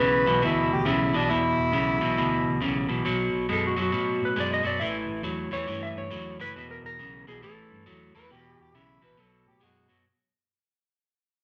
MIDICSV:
0, 0, Header, 1, 5, 480
1, 0, Start_track
1, 0, Tempo, 437956
1, 1429, Time_signature, 4, 2, 24, 8
1, 12529, End_track
2, 0, Start_track
2, 0, Title_t, "Electric slide guitar"
2, 0, Program_c, 0, 29
2, 0, Note_on_c, 0, 73, 91
2, 745, Note_off_c, 0, 73, 0
2, 3864, Note_on_c, 0, 69, 80
2, 4009, Note_off_c, 0, 69, 0
2, 4022, Note_on_c, 0, 66, 76
2, 4168, Note_off_c, 0, 66, 0
2, 4187, Note_on_c, 0, 66, 87
2, 4605, Note_off_c, 0, 66, 0
2, 4659, Note_on_c, 0, 71, 88
2, 4812, Note_off_c, 0, 71, 0
2, 4825, Note_on_c, 0, 74, 98
2, 4956, Note_off_c, 0, 74, 0
2, 4970, Note_on_c, 0, 75, 101
2, 5111, Note_off_c, 0, 75, 0
2, 5115, Note_on_c, 0, 74, 95
2, 5256, Note_on_c, 0, 76, 85
2, 5275, Note_off_c, 0, 74, 0
2, 5707, Note_off_c, 0, 76, 0
2, 6062, Note_on_c, 0, 73, 105
2, 6366, Note_off_c, 0, 73, 0
2, 6387, Note_on_c, 0, 76, 99
2, 6552, Note_off_c, 0, 76, 0
2, 6554, Note_on_c, 0, 73, 98
2, 7023, Note_off_c, 0, 73, 0
2, 7027, Note_on_c, 0, 71, 101
2, 7348, Note_off_c, 0, 71, 0
2, 7352, Note_on_c, 0, 70, 89
2, 7499, Note_off_c, 0, 70, 0
2, 7518, Note_on_c, 0, 70, 90
2, 7979, Note_off_c, 0, 70, 0
2, 7983, Note_on_c, 0, 68, 81
2, 8147, Note_off_c, 0, 68, 0
2, 8152, Note_on_c, 0, 69, 83
2, 9067, Note_off_c, 0, 69, 0
2, 12529, End_track
3, 0, Start_track
3, 0, Title_t, "Harmonica"
3, 0, Program_c, 1, 22
3, 0, Note_on_c, 1, 71, 91
3, 457, Note_off_c, 1, 71, 0
3, 490, Note_on_c, 1, 64, 81
3, 781, Note_off_c, 1, 64, 0
3, 801, Note_on_c, 1, 67, 83
3, 952, Note_on_c, 1, 64, 87
3, 968, Note_off_c, 1, 67, 0
3, 1276, Note_on_c, 1, 62, 109
3, 1292, Note_off_c, 1, 64, 0
3, 1422, Note_on_c, 1, 64, 118
3, 1439, Note_off_c, 1, 62, 0
3, 2820, Note_off_c, 1, 64, 0
3, 8943, Note_on_c, 1, 71, 105
3, 9106, Note_off_c, 1, 71, 0
3, 9114, Note_on_c, 1, 67, 93
3, 9412, Note_off_c, 1, 67, 0
3, 9433, Note_on_c, 1, 67, 91
3, 9589, Note_on_c, 1, 64, 85
3, 9605, Note_off_c, 1, 67, 0
3, 9890, Note_off_c, 1, 64, 0
3, 9905, Note_on_c, 1, 71, 85
3, 10075, Note_on_c, 1, 69, 75
3, 10091, Note_off_c, 1, 71, 0
3, 10373, Note_off_c, 1, 69, 0
3, 10385, Note_on_c, 1, 67, 80
3, 10547, Note_off_c, 1, 67, 0
3, 10558, Note_on_c, 1, 66, 89
3, 10854, Note_off_c, 1, 66, 0
3, 12529, End_track
4, 0, Start_track
4, 0, Title_t, "Clean electric guitar"
4, 0, Program_c, 2, 27
4, 0, Note_on_c, 2, 40, 68
4, 0, Note_on_c, 2, 49, 81
4, 270, Note_off_c, 2, 40, 0
4, 270, Note_off_c, 2, 49, 0
4, 290, Note_on_c, 2, 40, 79
4, 302, Note_on_c, 2, 47, 89
4, 439, Note_off_c, 2, 40, 0
4, 452, Note_on_c, 2, 40, 84
4, 454, Note_off_c, 2, 47, 0
4, 467, Note_on_c, 2, 47, 106
4, 906, Note_off_c, 2, 40, 0
4, 914, Note_off_c, 2, 47, 0
4, 935, Note_on_c, 2, 40, 85
4, 942, Note_on_c, 2, 49, 102
4, 1221, Note_off_c, 2, 40, 0
4, 1224, Note_off_c, 2, 49, 0
4, 1244, Note_on_c, 2, 40, 77
4, 1253, Note_on_c, 2, 47, 77
4, 1404, Note_off_c, 2, 40, 0
4, 1409, Note_off_c, 2, 47, 0
4, 1425, Note_on_c, 2, 40, 82
4, 1433, Note_on_c, 2, 47, 75
4, 1872, Note_off_c, 2, 40, 0
4, 1876, Note_off_c, 2, 47, 0
4, 1890, Note_on_c, 2, 40, 79
4, 1895, Note_on_c, 2, 49, 83
4, 2178, Note_off_c, 2, 40, 0
4, 2180, Note_off_c, 2, 49, 0
4, 2205, Note_on_c, 2, 40, 70
4, 2206, Note_on_c, 2, 47, 76
4, 2364, Note_off_c, 2, 40, 0
4, 2364, Note_off_c, 2, 47, 0
4, 2383, Note_on_c, 2, 40, 79
4, 2393, Note_on_c, 2, 47, 106
4, 2831, Note_off_c, 2, 40, 0
4, 2835, Note_off_c, 2, 47, 0
4, 2856, Note_on_c, 2, 40, 81
4, 2866, Note_on_c, 2, 49, 100
4, 3140, Note_off_c, 2, 40, 0
4, 3145, Note_off_c, 2, 49, 0
4, 3164, Note_on_c, 2, 40, 76
4, 3169, Note_on_c, 2, 47, 72
4, 3323, Note_off_c, 2, 40, 0
4, 3326, Note_off_c, 2, 47, 0
4, 3342, Note_on_c, 2, 47, 74
4, 3347, Note_on_c, 2, 54, 88
4, 3790, Note_off_c, 2, 47, 0
4, 3793, Note_off_c, 2, 54, 0
4, 3824, Note_on_c, 2, 47, 73
4, 3827, Note_on_c, 2, 56, 79
4, 4104, Note_off_c, 2, 47, 0
4, 4105, Note_off_c, 2, 56, 0
4, 4125, Note_on_c, 2, 47, 75
4, 4128, Note_on_c, 2, 54, 92
4, 4283, Note_off_c, 2, 47, 0
4, 4285, Note_off_c, 2, 54, 0
4, 4298, Note_on_c, 2, 54, 87
4, 4299, Note_on_c, 2, 47, 94
4, 4748, Note_off_c, 2, 47, 0
4, 4748, Note_off_c, 2, 54, 0
4, 4781, Note_on_c, 2, 47, 92
4, 4784, Note_on_c, 2, 56, 105
4, 5062, Note_off_c, 2, 47, 0
4, 5064, Note_off_c, 2, 56, 0
4, 5077, Note_on_c, 2, 47, 78
4, 5091, Note_on_c, 2, 54, 74
4, 5240, Note_off_c, 2, 47, 0
4, 5247, Note_off_c, 2, 54, 0
4, 5272, Note_on_c, 2, 45, 74
4, 5274, Note_on_c, 2, 52, 92
4, 5715, Note_off_c, 2, 45, 0
4, 5716, Note_off_c, 2, 52, 0
4, 5736, Note_on_c, 2, 45, 77
4, 5742, Note_on_c, 2, 54, 85
4, 6020, Note_off_c, 2, 45, 0
4, 6023, Note_off_c, 2, 54, 0
4, 6040, Note_on_c, 2, 45, 74
4, 6056, Note_on_c, 2, 52, 92
4, 6198, Note_off_c, 2, 45, 0
4, 6209, Note_off_c, 2, 52, 0
4, 6211, Note_on_c, 2, 45, 82
4, 6221, Note_on_c, 2, 52, 104
4, 6665, Note_off_c, 2, 45, 0
4, 6670, Note_off_c, 2, 52, 0
4, 6693, Note_on_c, 2, 45, 92
4, 6701, Note_on_c, 2, 54, 96
4, 6979, Note_off_c, 2, 45, 0
4, 6983, Note_off_c, 2, 54, 0
4, 7011, Note_on_c, 2, 45, 82
4, 7015, Note_on_c, 2, 52, 79
4, 7167, Note_off_c, 2, 45, 0
4, 7169, Note_off_c, 2, 52, 0
4, 7192, Note_on_c, 2, 40, 74
4, 7195, Note_on_c, 2, 47, 86
4, 7636, Note_off_c, 2, 40, 0
4, 7638, Note_off_c, 2, 47, 0
4, 7661, Note_on_c, 2, 40, 72
4, 7665, Note_on_c, 2, 49, 90
4, 7943, Note_off_c, 2, 40, 0
4, 7945, Note_off_c, 2, 49, 0
4, 7973, Note_on_c, 2, 40, 80
4, 7978, Note_on_c, 2, 47, 81
4, 8128, Note_off_c, 2, 40, 0
4, 8131, Note_off_c, 2, 47, 0
4, 8138, Note_on_c, 2, 45, 96
4, 8143, Note_on_c, 2, 52, 89
4, 8590, Note_off_c, 2, 45, 0
4, 8592, Note_off_c, 2, 52, 0
4, 8617, Note_on_c, 2, 54, 108
4, 8618, Note_on_c, 2, 45, 84
4, 8902, Note_off_c, 2, 45, 0
4, 8902, Note_off_c, 2, 54, 0
4, 8931, Note_on_c, 2, 45, 79
4, 8939, Note_on_c, 2, 52, 84
4, 9088, Note_off_c, 2, 45, 0
4, 9092, Note_off_c, 2, 52, 0
4, 9101, Note_on_c, 2, 40, 73
4, 9101, Note_on_c, 2, 47, 89
4, 9551, Note_off_c, 2, 40, 0
4, 9551, Note_off_c, 2, 47, 0
4, 9588, Note_on_c, 2, 40, 69
4, 9590, Note_on_c, 2, 49, 85
4, 9868, Note_off_c, 2, 40, 0
4, 9868, Note_off_c, 2, 49, 0
4, 9882, Note_on_c, 2, 40, 82
4, 9888, Note_on_c, 2, 47, 75
4, 10042, Note_off_c, 2, 47, 0
4, 10043, Note_off_c, 2, 40, 0
4, 10055, Note_on_c, 2, 47, 94
4, 10062, Note_on_c, 2, 54, 83
4, 10508, Note_off_c, 2, 47, 0
4, 10512, Note_off_c, 2, 54, 0
4, 10527, Note_on_c, 2, 47, 87
4, 10535, Note_on_c, 2, 56, 90
4, 10817, Note_off_c, 2, 47, 0
4, 10821, Note_off_c, 2, 56, 0
4, 10836, Note_on_c, 2, 47, 72
4, 10847, Note_on_c, 2, 54, 80
4, 11001, Note_off_c, 2, 47, 0
4, 11006, Note_off_c, 2, 54, 0
4, 12529, End_track
5, 0, Start_track
5, 0, Title_t, "Fingered electric bass"
5, 0, Program_c, 3, 33
5, 0, Note_on_c, 3, 35, 75
5, 268, Note_off_c, 3, 35, 0
5, 301, Note_on_c, 3, 35, 93
5, 450, Note_off_c, 3, 35, 0
5, 470, Note_on_c, 3, 38, 85
5, 742, Note_off_c, 3, 38, 0
5, 793, Note_on_c, 3, 38, 89
5, 936, Note_off_c, 3, 38, 0
5, 949, Note_on_c, 3, 35, 101
5, 1221, Note_off_c, 3, 35, 0
5, 1271, Note_on_c, 3, 35, 82
5, 1415, Note_off_c, 3, 35, 0
5, 1434, Note_on_c, 3, 28, 83
5, 1703, Note_off_c, 3, 28, 0
5, 1726, Note_on_c, 3, 28, 90
5, 1880, Note_off_c, 3, 28, 0
5, 1897, Note_on_c, 3, 35, 85
5, 2174, Note_off_c, 3, 35, 0
5, 2227, Note_on_c, 3, 35, 85
5, 2372, Note_off_c, 3, 35, 0
5, 2389, Note_on_c, 3, 38, 88
5, 2660, Note_off_c, 3, 38, 0
5, 2707, Note_on_c, 3, 38, 86
5, 2852, Note_off_c, 3, 38, 0
5, 2868, Note_on_c, 3, 35, 88
5, 3139, Note_off_c, 3, 35, 0
5, 3176, Note_on_c, 3, 35, 86
5, 3345, Note_off_c, 3, 35, 0
5, 3349, Note_on_c, 3, 35, 89
5, 3620, Note_off_c, 3, 35, 0
5, 3646, Note_on_c, 3, 35, 85
5, 3800, Note_off_c, 3, 35, 0
5, 3823, Note_on_c, 3, 42, 73
5, 4096, Note_off_c, 3, 42, 0
5, 4120, Note_on_c, 3, 42, 87
5, 4277, Note_off_c, 3, 42, 0
5, 4299, Note_on_c, 3, 45, 91
5, 4574, Note_off_c, 3, 45, 0
5, 4615, Note_on_c, 3, 45, 96
5, 4765, Note_off_c, 3, 45, 0
5, 4785, Note_on_c, 3, 42, 84
5, 5058, Note_off_c, 3, 42, 0
5, 5091, Note_on_c, 3, 42, 84
5, 5242, Note_off_c, 3, 42, 0
5, 5248, Note_on_c, 3, 33, 84
5, 5528, Note_off_c, 3, 33, 0
5, 5568, Note_on_c, 3, 33, 89
5, 5721, Note_off_c, 3, 33, 0
5, 5725, Note_on_c, 3, 40, 88
5, 6007, Note_off_c, 3, 40, 0
5, 6042, Note_on_c, 3, 40, 85
5, 6198, Note_off_c, 3, 40, 0
5, 6209, Note_on_c, 3, 43, 84
5, 6489, Note_off_c, 3, 43, 0
5, 6525, Note_on_c, 3, 43, 93
5, 6680, Note_off_c, 3, 43, 0
5, 6698, Note_on_c, 3, 40, 89
5, 6974, Note_off_c, 3, 40, 0
5, 7012, Note_on_c, 3, 30, 86
5, 7164, Note_off_c, 3, 30, 0
5, 7187, Note_on_c, 3, 28, 89
5, 7459, Note_off_c, 3, 28, 0
5, 7478, Note_on_c, 3, 28, 91
5, 7636, Note_off_c, 3, 28, 0
5, 7655, Note_on_c, 3, 35, 88
5, 7933, Note_off_c, 3, 35, 0
5, 7966, Note_on_c, 3, 35, 86
5, 8140, Note_off_c, 3, 35, 0
5, 8140, Note_on_c, 3, 33, 91
5, 8416, Note_off_c, 3, 33, 0
5, 8453, Note_on_c, 3, 43, 90
5, 8605, Note_off_c, 3, 43, 0
5, 8624, Note_on_c, 3, 40, 97
5, 8899, Note_off_c, 3, 40, 0
5, 8933, Note_on_c, 3, 40, 86
5, 9085, Note_off_c, 3, 40, 0
5, 9098, Note_on_c, 3, 28, 83
5, 9375, Note_off_c, 3, 28, 0
5, 9416, Note_on_c, 3, 28, 89
5, 9567, Note_off_c, 3, 28, 0
5, 9574, Note_on_c, 3, 35, 82
5, 9853, Note_off_c, 3, 35, 0
5, 9886, Note_on_c, 3, 34, 88
5, 10041, Note_off_c, 3, 34, 0
5, 10065, Note_on_c, 3, 35, 90
5, 10339, Note_off_c, 3, 35, 0
5, 10366, Note_on_c, 3, 45, 93
5, 10521, Note_off_c, 3, 45, 0
5, 10549, Note_on_c, 3, 42, 97
5, 10821, Note_off_c, 3, 42, 0
5, 10852, Note_on_c, 3, 42, 84
5, 11005, Note_off_c, 3, 42, 0
5, 12529, End_track
0, 0, End_of_file